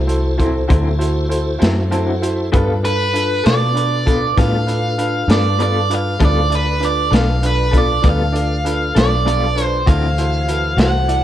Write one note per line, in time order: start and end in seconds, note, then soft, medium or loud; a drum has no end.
0.00 0.67 C2 medium
0.00 2.50 E4 medium
0.00 2.50 F#4 medium
0.00 2.50 A4 medium
0.00 2.50 C5 medium
0.07 0.30 E4 medium
0.07 0.31 F#4 medium
0.07 0.31 A4 medium
0.07 0.31 C5 medium
0.07 closed hi-hat medium
0.37 0.58 F#3 soft
0.37 0.57 C4 soft
0.37 0.61 E4 medium
0.37 0.57 E4 soft
0.37 0.61 F#4 medium
0.37 0.61 A4 medium
0.37 0.61 C5 medium
0.37 kick medium
0.37 closed hi-hat medium
0.67 1.59 D2 medium
0.67 0.87 D3 medium
0.67 0.88 F#3 medium
0.67 0.88 C4 medium
0.67 0.91 E4 medium
0.67 0.88 E4 medium
0.67 0.91 F#4 medium
0.67 0.91 A4 soft
0.67 0.92 C5 medium
0.67 kick loud
0.67 closed hi-hat medium
0.98 1.22 E4 medium
0.98 1.22 F#4 medium
0.98 1.22 A4 medium
0.98 1.22 C5 medium
0.98 closed hi-hat medium
1.28 1.52 E4 medium
1.28 1.53 F#4 soft
1.28 1.53 A4 soft
1.28 1.53 C5 medium
1.28 closed hi-hat soft
1.58 2.51 F#2 medium
1.58 1.80 C4 soft
1.58 1.83 E4 medium
1.58 1.79 E4 soft
1.58 1.83 F#4 medium
1.58 1.83 A4 medium
1.58 1.83 C5 medium
1.58 closed hi-hat medium
1.63 1.80 F#3 soft
1.63 snare medium
1.91 2.10 D3 medium
1.91 2.10 F#3 medium
1.91 2.11 C4 medium
1.91 2.14 E4 medium
1.91 2.11 E4 medium
1.91 2.15 F#4 soft
1.91 2.14 A4 soft
1.91 2.14 C5 medium
1.91 2.05 A5 soft
1.91 closed hi-hat medium
2.07 2.21 F#5 soft
2.22 2.45 E4 medium
2.22 2.45 F#4 soft
2.22 2.45 A4 soft
2.22 2.45 C5 medium
2.22 2.51 E5 soft
2.22 closed hi-hat medium
2.52 3.42 G2 medium
2.52 2.71 G3 medium
2.52 2.71 B3 medium
2.52 2.75 D4 medium
2.52 6.17 D4 medium
2.52 2.76 F4 medium
2.52 2.71 F4 medium
2.52 6.17 F4 medium
2.52 2.76 A4 medium
2.52 2.71 A4 medium
2.52 6.17 A4 medium
2.52 2.76 B4 medium
2.52 6.17 B4 medium
2.52 kick medium
2.52 closed hi-hat medium
2.83 3.06 D4 soft
2.83 3.06 F4 soft
2.83 3.06 A4 soft
2.83 3.07 B4 medium
2.83 3.46 B4 medium
2.83 closed hi-hat medium
3.13 3.37 D4 soft
3.13 3.37 F4 soft
3.13 3.37 A4 soft
3.13 3.37 B4 medium
3.13 closed hi-hat medium
3.44 4.34 B2 medium
3.44 3.64 B3 soft
3.44 3.68 D4 soft
3.44 3.68 F4 soft
3.44 3.63 F4 soft
3.44 3.63 A4 soft
3.44 3.68 A4 soft
3.44 3.68 D5 medium
3.44 4.39 D5 medium
3.44 snare medium
3.44 closed hi-hat medium
3.74 3.98 D4 medium
3.74 3.98 F4 soft
3.74 3.98 A4 soft
3.74 3.98 B4 medium
3.74 closed hi-hat medium
4.06 4.25 B3 soft
4.06 4.29 D4 soft
4.06 4.29 F4 soft
4.06 4.25 F4 soft
4.06 4.24 A4 soft
4.06 4.29 A4 soft
4.06 4.29 B4 medium
4.06 kick medium
4.06 closed hi-hat medium
4.36 5.26 A2 medium
4.36 4.55 G3 medium
4.36 4.55 B3 medium
4.36 4.59 D4 soft
4.36 4.59 F4 soft
4.36 4.56 F4 medium
4.36 4.60 A4 soft
4.36 4.56 A4 medium
4.36 4.60 B4 soft
4.36 5.31 F5 medium
4.36 kick loud
4.36 snare soft
4.36 closed hi-hat medium
4.67 4.90 D4 soft
4.67 4.90 F4 soft
4.67 4.90 A4 soft
4.67 4.90 B4 medium
4.67 closed hi-hat medium
4.98 5.21 D4 soft
4.98 5.21 F4 soft
4.98 5.21 A4 soft
4.98 5.21 B4 medium
4.98 closed hi-hat soft
5.28 6.17 G2 medium
5.28 5.48 B3 soft
5.28 5.51 D4 soft
5.28 5.51 F4 soft
5.28 5.48 F4 soft
5.28 5.51 A4 soft
5.28 5.47 A4 soft
5.28 5.51 B4 medium
5.28 5.61 D5 medium
5.28 snare medium
5.28 closed hi-hat medium
5.59 5.77 G3 medium
5.59 5.78 B3 medium
5.59 5.82 D4 soft
5.59 5.82 F4 soft
5.59 5.78 F4 medium
5.59 5.82 A4 soft
5.59 5.78 A4 medium
5.59 5.82 B4 medium
5.59 5.92 D5 medium
5.59 closed hi-hat soft
5.90 6.12 D4 soft
5.90 6.12 F4 soft
5.90 6.13 A4 soft
5.90 6.13 B4 medium
5.90 closed hi-hat medium
5.95 6.23 F5 medium
6.20 7.09 D2 medium
6.20 6.38 G3 medium
6.20 6.39 B3 medium
6.20 6.43 D4 medium
6.20 6.43 F4 medium
6.20 6.39 F4 medium
6.20 6.43 A4 medium
6.20 6.39 A4 medium
6.20 6.43 B4 medium
6.20 6.51 C5 soft
6.20 kick loud
6.20 closed hi-hat medium
6.25 6.54 D5 medium
6.50 6.73 D4 soft
6.50 6.73 F4 soft
6.50 9.83 F4 medium
6.50 6.73 A4 soft
6.50 9.83 A4 medium
6.50 9.83 B4 medium
6.50 6.73 D5 medium
6.50 9.83 D5 medium
6.50 closed hi-hat soft
6.55 6.84 B4 medium
6.80 7.03 D4 soft
6.80 7.04 F4 soft
6.80 7.04 A4 soft
6.80 7.04 B4 medium
6.80 closed hi-hat medium
6.85 7.14 D5 medium
7.11 8.00 B1 medium
7.11 7.30 B3 soft
7.11 7.34 D4 soft
7.11 7.34 F4 soft
7.11 7.30 F4 soft
7.11 7.29 A4 soft
7.11 7.34 A4 soft
7.11 7.34 B4 medium
7.11 7.44 F5 medium
7.11 snare medium
7.11 closed hi-hat medium
7.43 7.65 D4 soft
7.43 7.65 F4 soft
7.43 7.66 A4 soft
7.43 7.65 B4 medium
7.43 7.75 B4 medium
7.43 closed hi-hat medium
7.71 7.92 B3 soft
7.71 7.95 D4 soft
7.71 7.91 F4 soft
7.71 7.96 F4 soft
7.71 7.90 A4 soft
7.71 7.96 A4 soft
7.71 7.96 B4 medium
7.71 kick medium
7.71 closed hi-hat medium
7.78 8.06 D5 medium
8.02 8.92 D2 medium
8.02 8.22 G3 medium
8.02 8.22 B3 medium
8.02 8.25 D4 soft
8.02 8.25 F4 soft
8.02 8.22 F4 medium
8.02 8.25 A4 soft
8.02 8.22 A4 medium
8.02 8.26 B4 medium
8.02 kick loud
8.02 closed hi-hat medium
8.09 8.98 F5 medium
8.32 8.56 D4 soft
8.32 8.56 F4 soft
8.32 8.56 A4 soft
8.32 8.56 D5 medium
8.32 closed hi-hat medium
8.64 8.87 D4 medium
8.64 8.87 F4 soft
8.64 8.87 A4 soft
8.64 8.87 B4 medium
8.64 closed hi-hat medium
8.95 9.84 B1 medium
8.95 9.14 B3 soft
8.95 9.18 D4 medium
8.95 9.18 F4 soft
8.95 9.14 F4 soft
8.95 9.13 A4 soft
8.95 9.18 A4 soft
8.95 9.18 B4 medium
8.95 9.64 D5 medium
8.95 snare medium
8.95 closed hi-hat medium
9.25 9.44 G3 medium
9.25 9.44 B3 medium
9.25 9.48 D4 soft
9.25 9.48 F4 soft
9.25 9.44 F4 medium
9.25 9.48 A4 soft
9.25 9.45 A4 medium
9.25 9.48 D5 medium
9.25 closed hi-hat medium
9.55 9.78 D4 soft
9.55 9.78 F4 soft
9.55 9.79 A4 soft
9.55 9.79 B4 medium
9.55 closed hi-hat medium
9.64 9.88 C5 medium
9.86 10.76 D2 medium
9.86 10.05 D3 medium
9.86 11.24 E3 medium
9.86 10.05 C4 medium
9.86 10.05 E4 medium
9.86 10.10 E4 medium
9.86 10.10 F#4 soft
9.86 11.24 F#4 medium
9.86 10.05 F#4 medium
9.86 10.10 A4 medium
9.86 11.24 A4 medium
9.86 11.24 C5 medium
9.86 10.10 C5 medium
9.86 10.80 F5 medium
9.86 kick medium
9.86 closed hi-hat medium
10.18 10.40 E4 soft
10.18 10.40 F#4 soft
10.18 10.41 A4 soft
10.18 10.40 C5 medium
10.18 closed hi-hat soft
10.47 10.70 E4 soft
10.47 10.70 F#4 soft
10.47 10.71 A4 soft
10.47 10.70 B4 medium
10.47 closed hi-hat medium
10.77 11.24 C2 medium
10.77 10.96 C4 soft
10.77 10.96 E4 soft
10.77 11.01 E4 soft
10.77 10.96 F#4 medium
10.77 11.01 F#4 soft
10.77 11.01 A4 soft
10.77 11.01 C5 medium
10.77 11.24 F#5 medium
10.77 snare loud
10.77 closed hi-hat medium
11.08 11.24 E4 medium
11.08 11.24 F#4 soft
11.08 11.24 A4 soft
11.08 11.24 D5 medium
11.08 closed hi-hat medium